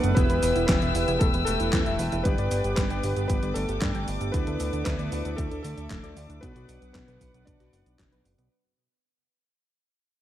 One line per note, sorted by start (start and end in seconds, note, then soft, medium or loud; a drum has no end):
0.00 0.14 F#1 medium
0.00 0.14 F#3 medium
0.00 0.13 A3 medium
0.00 0.14 B3 medium
0.00 0.11 B3 loud
0.00 0.14 D4 medium
0.00 0.18 A4 medium
0.00 0.14 B4 medium
0.00 4.30 B4 medium
0.00 0.13 D5 medium
0.00 0.15 F#5 medium
0.00 0.13 D6 medium
0.00 closed hi-hat soft
0.00 cabasa soft
0.15 0.27 E1 loud
0.15 1.05 B3 medium
0.15 0.65 B3 medium
0.15 0.28 E4 medium
0.15 1.05 E4 medium
0.15 1.05 G4 medium
0.15 0.64 B4 loud
0.15 1.05 E5 loud
0.15 2.23 E5 medium
0.15 4.30 G5 medium
0.15 2.23 E6 medium
0.15 kick loud
0.15 closed hi-hat medium
0.15 cabasa soft
0.30 0.40 E1 medium
0.30 0.41 B4 loud
0.30 closed hi-hat soft
0.30 cabasa soft
0.43 0.53 E1 loud
0.43 0.50 B4 medium
0.43 open hi-hat loud
0.43 cabasa medium
0.56 0.66 E1 medium
0.56 0.60 E4 medium
0.56 closed hi-hat soft
0.56 cabasa soft
0.67 0.79 E1 loud
0.67 0.76 E3 loud
0.67 1.18 B3 medium
0.67 1.22 B4 medium
0.67 kick loud
0.67 snare loud
0.67 clap medium
0.67 closed hi-hat medium
0.67 cabasa soft
0.82 0.92 E1 medium
0.82 0.93 E5 loud
0.82 closed hi-hat soft
0.82 cabasa soft
0.95 1.05 E1 loud
0.95 1.00 E4 medium
0.95 open hi-hat loud
0.95 cabasa medium
1.08 1.18 E1 medium
1.08 2.22 B3 medium
1.08 2.22 E4 medium
1.08 1.16 E4 loud
1.08 2.22 G4 medium
1.08 2.22 E5 medium
1.08 closed hi-hat soft
1.08 cabasa soft
1.19 1.31 E1 loud
1.19 1.27 A3 medium
1.19 1.32 E4 medium
1.19 1.25 A4 medium
1.19 kick loud
1.19 closed hi-hat medium
1.19 cabasa soft
1.34 1.44 E1 medium
1.34 1.45 B4 loud
1.34 closed hi-hat soft
1.34 cabasa soft
1.45 1.57 E1 loud
1.45 2.22 A3 medium
1.45 2.20 A4 loud
1.45 1.55 B4 medium
1.45 open hi-hat loud
1.45 cabasa medium
1.60 1.70 E1 medium
1.60 1.65 E4 medium
1.60 closed hi-hat soft
1.60 cabasa soft
1.73 1.84 E2 loud
1.73 1.81 E3 loud
1.73 kick loud
1.73 snare loud
1.73 clap loud
1.73 closed hi-hat medium
1.73 cabasa soft
1.86 1.97 E1 medium
1.86 1.98 E5 loud
1.86 closed hi-hat soft
1.86 cabasa soft
1.99 2.10 E1 medium
1.99 2.04 E4 medium
1.99 open hi-hat loud
1.99 cabasa medium
2.12 2.23 E1 medium
2.12 2.20 E4 loud
2.12 closed hi-hat soft
2.12 cabasa soft
2.24 2.36 G1 loud
2.24 3.13 B3 medium
2.24 2.74 B3 medium
2.24 3.13 D4 medium
2.24 3.13 G4 medium
2.24 2.37 G4 medium
2.24 2.73 B4 loud
2.24 8.47 D5 medium
2.24 3.13 D5 loud
2.24 8.47 D6 medium
2.24 kick loud
2.24 closed hi-hat medium
2.24 cabasa soft
2.38 2.49 G1 medium
2.38 2.50 D5 loud
2.38 closed hi-hat soft
2.38 cabasa soft
2.51 2.62 G1 medium
2.51 2.59 D5 medium
2.51 open hi-hat loud
2.51 cabasa medium
2.64 2.75 G1 medium
2.64 2.69 G4 medium
2.64 closed hi-hat soft
2.64 cabasa soft
2.76 2.88 G1 loud
2.76 2.85 G3 loud
2.76 3.26 B3 medium
2.76 3.26 B4 medium
2.76 kick loud
2.76 snare loud
2.76 clap medium
2.76 closed hi-hat medium
2.76 cabasa soft
2.90 3.01 G1 medium
2.90 3.02 G5 loud
2.90 closed hi-hat soft
2.90 cabasa soft
3.03 3.14 G1 loud
3.03 3.08 G4 medium
3.03 open hi-hat loud
3.03 cabasa medium
3.17 3.27 G1 medium
3.17 4.31 B3 medium
3.17 4.31 D4 medium
3.17 4.31 G4 medium
3.17 3.24 G4 loud
3.17 4.31 D5 medium
3.17 closed hi-hat soft
3.17 cabasa soft
3.28 3.40 G1 loud
3.28 3.54 B3 medium
3.28 3.41 G4 medium
3.28 3.56 B4 loud
3.28 kick loud
3.28 closed hi-hat medium
3.28 cabasa soft
3.43 3.53 G1 medium
3.43 3.54 D5 loud
3.43 closed hi-hat soft
3.43 cabasa soft
3.54 3.66 G1 loud
3.54 4.30 A3 medium
3.54 4.29 A4 loud
3.54 3.63 D5 medium
3.54 open hi-hat loud
3.54 cabasa medium
3.69 3.79 G1 medium
3.69 3.73 G4 medium
3.69 closed hi-hat soft
3.69 cabasa soft
3.82 3.92 G2 loud
3.82 3.89 G3 loud
3.82 kick loud
3.82 snare loud
3.82 clap loud
3.82 closed hi-hat medium
3.82 cabasa soft
3.95 4.05 G1 medium
3.95 4.06 G5 loud
3.95 closed hi-hat soft
3.95 cabasa soft
4.08 4.18 G1 loud
4.08 4.13 G4 medium
4.08 open hi-hat loud
4.08 cabasa medium
4.21 4.31 G1 medium
4.21 4.29 G4 loud
4.21 closed hi-hat soft
4.21 cabasa soft
4.32 4.44 D2 loud
4.32 5.22 A3 medium
4.32 4.83 B3 medium
4.32 5.22 D4 medium
4.32 4.45 D4 medium
4.32 5.22 E4 medium
4.32 6.41 A4 medium
4.32 4.83 B4 loud
4.32 5.22 D5 loud
4.32 6.41 E5 medium
4.32 kick loud
4.32 closed hi-hat medium
4.32 cabasa soft
4.47 4.57 D2 medium
4.47 4.58 A4 loud
4.47 closed hi-hat soft
4.47 cabasa soft
4.60 4.71 D2 medium
4.60 4.68 A4 medium
4.60 open hi-hat loud
4.60 cabasa medium
4.73 4.83 D2 medium
4.73 4.78 D4 medium
4.73 closed hi-hat soft
4.73 cabasa soft
4.84 4.97 D2 loud
4.84 4.94 D3 loud
4.84 5.35 B3 medium
4.84 5.39 B4 medium
4.84 kick loud
4.84 snare loud
4.84 clap loud
4.84 closed hi-hat medium
4.84 cabasa soft
4.99 5.10 D2 medium
4.99 5.11 D5 loud
4.99 closed hi-hat soft
4.99 cabasa soft
5.12 5.23 D2 medium
5.12 5.17 D4 medium
5.12 open hi-hat loud
5.12 cabasa medium
5.25 5.36 D2 medium
5.25 6.40 A3 medium
5.25 5.33 D4 loud
5.25 6.40 D4 medium
5.25 6.40 E4 medium
5.25 6.40 D5 medium
5.25 closed hi-hat soft
5.25 cabasa soft
5.36 5.49 D2 loud
5.36 5.63 A3 medium
5.36 5.50 D4 medium
5.36 5.61 A4 loud
5.36 kick loud
5.36 closed hi-hat loud
5.36 cabasa soft
5.51 5.62 D2 medium
5.51 5.63 A4 loud
5.51 closed hi-hat soft
5.51 cabasa soft
5.63 5.75 D2 medium
5.63 6.39 A3 medium
5.63 6.44 A4 medium
5.63 5.72 A4 medium
5.63 open hi-hat loud
5.63 cabasa medium
5.77 5.88 D2 medium
5.77 5.82 D4 medium
5.77 closed hi-hat soft
5.77 cabasa soft
5.90 6.01 D1 loud
5.90 5.98 D3 loud
5.90 kick loud
5.90 snare loud
5.90 clap loud
5.90 closed hi-hat loud
5.90 cabasa soft
6.03 6.14 D2 medium
6.03 6.15 D5 loud
6.03 closed hi-hat soft
6.03 cabasa soft
6.17 6.27 D2 medium
6.17 6.21 D4 medium
6.17 open hi-hat loud
6.17 cabasa medium
6.30 6.40 D2 medium
6.30 6.37 D4 loud
6.30 closed hi-hat soft
6.30 cabasa soft
6.41 6.53 B1 loud
6.41 7.31 F#3 medium
6.41 7.31 B3 medium
6.41 6.54 B3 medium
6.41 6.92 B3 medium
6.41 7.31 D4 medium
6.41 6.90 B4 loud
6.41 8.49 B4 medium
6.41 7.31 B4 loud
6.41 8.49 F#5 medium
6.41 kick loud
6.41 closed hi-hat loud
6.41 cabasa soft
6.56 6.66 B1 medium
6.56 6.67 F#4 loud
6.56 closed hi-hat soft
6.56 cabasa soft
6.69 6.79 B1 medium
6.69 6.76 F#4 medium
6.69 open hi-hat loud
6.69 cabasa medium
6.82 6.92 B1 medium
6.82 6.86 B3 medium
6.82 closed hi-hat soft
6.82 cabasa soft
6.93 7.05 B1 loud
6.93 7.03 B2 loud
6.93 7.44 B3 medium
6.93 7.48 B4 medium
6.93 kick loud
6.93 snare loud
6.93 clap loud
6.93 closed hi-hat medium
6.93 cabasa soft
7.08 7.18 B1 medium
7.08 7.19 B4 loud
7.08 closed hi-hat soft
7.08 cabasa soft
7.21 7.31 B1 loud
7.21 7.26 B3 medium
7.21 kick medium
7.21 open hi-hat loud
7.21 cabasa medium
7.34 7.44 B1 medium
7.34 8.48 F#3 medium
7.34 7.42 B3 loud
7.34 8.48 B3 medium
7.34 8.48 D4 medium
7.34 8.48 B4 medium
7.34 closed hi-hat soft
7.34 cabasa soft
7.45 7.57 B1 loud
7.45 7.58 B3 medium
7.45 7.96 D4 medium
7.45 7.95 D5 medium
7.45 kick loud
7.45 closed hi-hat medium
7.45 cabasa soft
7.60 7.70 B1 medium
7.60 7.71 F#4 loud
7.60 snare soft
7.60 closed hi-hat soft
7.60 cabasa soft
7.73 7.83 F#1 medium
7.73 7.81 F#4 medium
7.73 open hi-hat loud
7.73 cabasa medium
7.86 7.96 B1 medium
7.86 7.91 B3 medium
7.86 closed hi-hat soft
7.86 cabasa soft
7.99 8.10 F#1 loud
7.99 8.07 B2 loud
7.99 kick loud
7.99 snare loud
7.99 clap loud
7.99 closed hi-hat loud
7.99 cabasa soft
8.12 8.23 B1 medium
8.12 8.24 B4 loud
8.12 closed hi-hat soft
8.12 cabasa soft
8.25 8.36 F#1 loud
8.25 8.30 B3 medium
8.25 open hi-hat loud
8.25 cabasa medium
8.38 8.49 B1 medium
8.38 8.46 B3 loud
8.38 closed hi-hat soft
8.38 cabasa soft